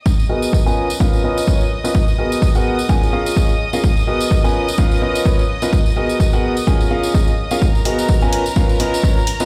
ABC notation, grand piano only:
X:1
M:4/4
L:1/16
Q:"Swing 16ths" 1/4=127
K:G#dor
V:1 name="Grand piano"
z2 [B,FGAd]3 [CEABg]2 z [CEABe]2 [CEABd]2 [Cc] z2 [CEABd] | z2 [B,FGAd]3 [B,FGAf]2 z [CEGAg]2 [CEGAe]2 [CEGAd] z2 [CEGAe] | z2 [B,FGAd]3 [CEABg]2 z [CEABe]2 [CEABd]2 [CABc] z2 [CEABd] | z2 [B,FGAd]3 [B,FGAf]2 z [CEGAg]2 [CEGAe]2 [CEGAd] z2 [CEGAe] |
z2 [B,FGAd]3 [CEABg]2 z [CEABe]2 [CEABd]2 [CEABc] z2 [CEABd] |]